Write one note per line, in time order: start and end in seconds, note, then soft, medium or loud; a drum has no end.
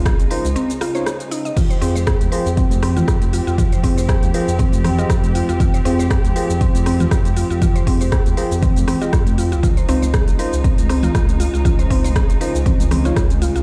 0.00 0.14 C#2 loud
0.00 1.53 C#3 medium
0.00 1.53 G#3 medium
0.00 1.53 D#4 medium
0.06 0.19 G#4 medium
0.06 kick loud
0.06 cross-stick loud
0.06 closed hi-hat medium
0.06 shaker medium
0.19 0.28 G#1 medium
0.19 closed hi-hat soft
0.19 shaker medium
0.31 0.46 D#4 medium
0.31 0.46 F4 medium
0.31 0.43 A#4 medium
0.31 0.46 C5 loud
0.31 open hi-hat loud
0.31 shaker medium
0.45 0.56 C#2 loud
0.45 closed hi-hat soft
0.45 shaker medium
0.56 0.68 C4 medium
0.56 closed hi-hat medium
0.56 shaker medium
0.70 closed hi-hat soft
0.70 shaker medium
0.81 0.94 F4 loud
0.81 cross-stick medium
0.81 open hi-hat loud
0.81 shaker medium
0.95 1.08 D#4 medium
0.95 1.08 F4 medium
0.95 1.01 C5 medium
0.95 1.08 C#5 medium
0.95 closed hi-hat soft
0.95 shaker medium
1.06 cross-stick loud
1.06 closed hi-hat medium
1.06 shaker medium
1.20 closed hi-hat soft
1.20 shaker medium
1.31 1.45 D#4 medium
1.31 open hi-hat medium
1.31 shaker medium
1.45 1.56 D#5 medium
1.45 closed hi-hat soft
1.45 shaker medium
1.56 9.59 F3 medium
1.56 9.59 C4 medium
1.56 1.69 F4 medium
1.56 9.59 G4 medium
1.56 kick loud
1.56 closed hi-hat medium
1.56 crash medium
1.56 low conga loud
1.56 shaker medium
1.70 1.77 C5 medium
1.70 closed hi-hat soft
1.70 shaker medium
1.82 2.15 F2 medium
1.82 1.94 C4 loud
1.82 1.97 F4 medium
1.82 1.97 G#4 medium
1.82 1.97 C5 medium
1.82 open hi-hat loud
1.82 shaker medium
1.96 2.06 C5 medium
1.96 high conga medium
1.96 shaker medium
2.07 2.20 G#4 medium
2.07 kick loud
2.07 cross-stick loud
2.07 closed hi-hat medium
2.07 shaker medium
2.21 2.30 D#2 medium
2.21 closed hi-hat soft
2.21 high conga medium
2.21 shaker medium
2.32 2.48 F4 loud
2.32 2.48 G#4 medium
2.32 2.45 A#4 medium
2.32 2.47 C5 loud
2.32 open hi-hat medium
2.32 shaker medium
2.46 2.64 F2 loud
2.46 closed hi-hat soft
2.46 shaker loud
2.57 2.70 C4 medium
2.57 kick loud
2.57 closed hi-hat medium
2.57 shaker medium
2.71 3.03 F2 loud
2.71 closed hi-hat soft
2.71 high conga loud
2.71 shaker medium
2.83 2.95 C4 loud
2.83 cross-stick medium
2.83 open hi-hat loud
2.83 shaker medium
2.96 3.07 F4 medium
2.96 closed hi-hat soft
2.96 high conga medium
2.96 low conga loud
2.96 shaker medium
3.08 3.41 F2 loud
3.08 kick loud
3.08 cross-stick loud
3.08 closed hi-hat medium
3.08 shaker medium
3.22 closed hi-hat soft
3.22 high conga loud
3.22 shaker medium
3.33 3.46 F4 medium
3.33 open hi-hat medium
3.33 high conga medium
3.33 shaker medium
3.47 3.79 F2 medium
3.47 3.57 F4 medium
3.47 shaker medium
3.58 3.71 F4 medium
3.58 kick loud
3.58 closed hi-hat medium
3.58 low conga loud
3.58 shaker medium
3.72 3.79 C5 medium
3.72 closed hi-hat soft
3.72 shaker medium
3.83 4.17 F2 loud
3.83 3.96 C4 loud
3.83 3.99 F4 medium
3.83 3.99 G#4 medium
3.83 3.99 C5 medium
3.83 kick medium
3.83 open hi-hat medium
3.83 shaker medium
3.97 4.08 C5 medium
3.97 open hi-hat medium
3.97 high conga medium
3.97 shaker loud
4.09 4.22 G#4 medium
4.09 kick loud
4.09 cross-stick loud
4.09 closed hi-hat medium
4.09 shaker medium
4.22 4.31 D#2 medium
4.22 closed hi-hat soft
4.22 high conga medium
4.22 shaker medium
4.34 4.49 F4 medium
4.34 4.49 G#4 medium
4.34 4.47 A#4 medium
4.34 4.49 C5 loud
4.34 open hi-hat loud
4.34 shaker medium
4.48 4.66 F2 loud
4.48 closed hi-hat soft
4.48 shaker loud
4.59 4.72 C4 medium
4.59 kick loud
4.59 closed hi-hat medium
4.59 low conga loud
4.59 shaker medium
4.72 5.05 F2 medium
4.72 closed hi-hat soft
4.72 high conga loud
4.72 shaker loud
4.84 4.97 C4 loud
4.84 cross-stick medium
4.84 open hi-hat medium
4.84 low conga loud
4.84 shaker medium
4.98 5.09 F4 medium
4.98 5.11 F4 medium
4.98 5.11 G#4 medium
4.98 5.11 D#5 loud
4.98 closed hi-hat soft
4.98 shaker medium
5.10 5.43 F2 loud
5.10 kick loud
5.10 cross-stick loud
5.10 closed hi-hat medium
5.10 shaker medium
5.23 closed hi-hat soft
5.23 high conga loud
5.23 shaker medium
5.34 5.47 F4 medium
5.34 open hi-hat medium
5.34 high conga medium
5.34 shaker loud
5.49 5.81 F2 medium
5.49 5.59 F4 medium
5.49 closed hi-hat soft
5.49 shaker medium
5.60 5.73 F4 medium
5.60 kick loud
5.60 closed hi-hat medium
5.60 low conga loud
5.60 shaker loud
5.74 5.80 C5 medium
5.74 closed hi-hat soft
5.74 shaker medium
5.85 6.19 F2 loud
5.85 5.98 C4 loud
5.85 6.01 F4 medium
5.85 6.01 G#4 medium
5.85 6.01 C5 loud
5.85 open hi-hat medium
5.85 shaker medium
5.99 6.10 C5 medium
5.99 high conga medium
5.99 shaker medium
6.11 6.24 G#4 medium
6.11 kick loud
6.11 cross-stick loud
6.11 closed hi-hat medium
6.11 shaker medium
6.24 6.33 D#2 medium
6.24 closed hi-hat soft
6.24 high conga medium
6.24 shaker medium
6.36 6.51 F4 medium
6.36 6.51 G#4 medium
6.36 6.48 A#4 medium
6.36 6.51 C5 loud
6.36 open hi-hat medium
6.36 shaker medium
6.50 6.68 F2 loud
6.50 closed hi-hat soft
6.50 shaker loud
6.61 6.73 C4 medium
6.61 kick loud
6.61 closed hi-hat medium
6.61 shaker medium
6.75 7.07 F2 medium
6.75 closed hi-hat soft
6.75 high conga loud
6.75 shaker loud
6.86 6.99 C4 loud
6.86 cross-stick medium
6.86 open hi-hat medium
6.86 shaker medium
7.00 7.11 F4 medium
7.00 closed hi-hat soft
7.00 high conga loud
7.00 low conga loud
7.00 shaker medium
7.11 7.45 F2 loud
7.11 kick loud
7.11 cross-stick loud
7.11 closed hi-hat medium
7.11 shaker loud
7.25 closed hi-hat soft
7.25 high conga loud
7.25 shaker medium
7.37 7.49 F4 medium
7.37 open hi-hat medium
7.37 high conga medium
7.37 shaker loud
7.50 7.82 F2 medium
7.50 7.61 F4 medium
7.50 shaker medium
7.62 7.74 F4 medium
7.62 kick loud
7.62 closed hi-hat medium
7.62 low conga loud
7.62 shaker loud
7.76 7.82 C5 medium
7.76 closed hi-hat soft
7.76 shaker medium
7.87 8.21 F2 loud
7.87 8.00 C4 loud
7.87 8.02 F4 medium
7.87 8.02 G#4 medium
7.87 8.02 C5 medium
7.87 kick medium
7.87 open hi-hat medium
7.87 shaker medium
8.01 8.12 C5 medium
8.01 open hi-hat medium
8.01 high conga medium
8.01 shaker loud
8.12 8.25 G#4 medium
8.12 kick loud
8.12 cross-stick loud
8.12 closed hi-hat medium
8.12 shaker medium
8.26 8.35 D#2 medium
8.26 closed hi-hat soft
8.26 high conga medium
8.26 shaker medium
8.37 8.53 F4 medium
8.37 8.53 G#4 medium
8.37 8.50 A#4 medium
8.37 8.53 C5 loud
8.37 open hi-hat medium
8.37 shaker medium
8.51 8.70 F2 loud
8.51 closed hi-hat soft
8.51 shaker loud
8.62 8.75 C4 medium
8.62 kick loud
8.62 closed hi-hat medium
8.62 low conga medium
8.62 shaker medium
8.76 8.85 F2 loud
8.76 closed hi-hat soft
8.76 high conga loud
8.76 shaker loud
8.88 9.00 C4 loud
8.88 cross-stick medium
8.88 open hi-hat medium
8.88 low conga loud
8.88 shaker medium
9.01 9.12 F4 medium
9.01 9.15 F4 medium
9.01 9.15 G#4 medium
9.01 9.15 D#5 medium
9.01 closed hi-hat soft
9.01 shaker medium
9.13 9.54 F2 medium
9.13 kick loud
9.13 cross-stick loud
9.13 closed hi-hat medium
9.13 shaker medium
9.27 closed hi-hat soft
9.27 high conga loud
9.27 shaker medium
9.38 9.51 F4 medium
9.38 open hi-hat medium
9.38 high conga medium
9.38 shaker medium
9.52 9.84 C#2 medium
9.52 9.62 F4 medium
9.52 closed hi-hat soft
9.52 shaker medium
9.63 13.63 C#3 medium
9.63 13.63 G#3 medium
9.63 13.63 D#4 medium
9.63 9.76 F4 medium
9.63 kick loud
9.63 closed hi-hat medium
9.63 low conga loud
9.63 shaker loud
9.77 9.83 C5 medium
9.77 closed hi-hat soft
9.77 shaker medium
9.89 10.22 C#2 loud
9.89 10.01 C4 loud
9.89 10.04 D#4 medium
9.89 10.04 F4 medium
9.89 10.04 C5 loud
9.89 open hi-hat medium
9.89 shaker medium
10.02 10.13 C5 medium
10.02 high conga medium
10.02 shaker medium
10.14 10.27 G#4 medium
10.14 kick loud
10.14 cross-stick loud
10.14 closed hi-hat medium
10.14 shaker medium
10.28 10.36 G#1 loud
10.28 closed hi-hat soft
10.28 high conga medium
10.28 shaker medium
10.39 10.54 D#4 loud
10.39 10.54 F4 medium
10.39 10.52 A#4 medium
10.39 10.54 C5 loud
10.39 open hi-hat medium
10.39 shaker medium
10.53 10.71 C#2 loud
10.53 closed hi-hat soft
10.53 shaker loud
10.64 10.77 C4 medium
10.64 kick loud
10.64 closed hi-hat medium
10.64 shaker medium
10.78 11.10 C#2 medium
10.78 closed hi-hat soft
10.78 high conga loud
10.78 shaker medium
10.89 11.02 C4 loud
10.89 cross-stick medium
10.89 open hi-hat medium
10.89 shaker medium
11.03 11.14 F4 medium
11.03 closed hi-hat soft
11.03 high conga medium
11.03 low conga loud
11.03 shaker medium
11.15 11.48 C#2 loud
11.15 kick loud
11.15 cross-stick loud
11.15 closed hi-hat medium
11.15 shaker medium
11.29 closed hi-hat soft
11.29 high conga loud
11.29 shaker medium
11.40 11.52 F4 medium
11.40 open hi-hat medium
11.40 high conga medium
11.40 shaker medium
11.54 11.86 C#2 medium
11.54 11.64 F4 medium
11.54 shaker medium
11.65 11.78 F4 medium
11.65 kick loud
11.65 closed hi-hat medium
11.65 low conga medium
11.65 shaker medium
11.79 11.85 C5 medium
11.79 closed hi-hat soft
11.79 shaker medium
11.90 12.24 C#2 loud
11.90 12.03 C4 loud
11.90 12.06 D#4 medium
11.90 12.06 F4 medium
11.90 12.06 C5 medium
11.90 kick medium
11.90 open hi-hat medium
11.90 shaker medium
12.04 12.15 C5 medium
12.04 open hi-hat medium
12.04 high conga medium
12.04 shaker medium
12.16 12.29 G#4 medium
12.16 kick loud
12.16 cross-stick loud
12.16 closed hi-hat medium
12.16 shaker medium
12.29 12.38 G#1 medium
12.29 closed hi-hat soft
12.29 high conga medium
12.29 shaker medium
12.41 12.56 D#4 medium
12.41 12.56 F4 medium
12.41 12.53 A#4 medium
12.41 12.56 C5 loud
12.41 open hi-hat medium
12.41 shaker medium
12.55 12.73 C#2 loud
12.55 closed hi-hat soft
12.55 shaker medium
12.66 12.79 C4 medium
12.66 kick loud
12.66 closed hi-hat medium
12.66 low conga medium
12.66 shaker medium
12.80 13.12 C#2 loud
12.80 closed hi-hat soft
12.80 high conga loud
12.80 shaker medium
12.91 13.04 C4 loud
12.91 cross-stick medium
12.91 open hi-hat medium
12.91 low conga loud
12.91 shaker medium
13.05 13.18 D#4 medium
13.05 13.18 F4 medium
13.05 13.16 F4 medium
13.05 13.18 C#5 medium
13.05 closed hi-hat soft
13.05 shaker medium
13.16 13.50 C#2 loud
13.16 kick loud
13.16 cross-stick loud
13.16 closed hi-hat medium
13.16 shaker medium
13.30 closed hi-hat soft
13.30 high conga loud
13.30 shaker medium
13.42 13.54 F4 medium
13.42 open hi-hat medium
13.42 high conga medium
13.42 shaker medium
13.56 13.63 C#2 medium
13.56 13.63 F4 medium
13.56 closed hi-hat soft
13.56 shaker medium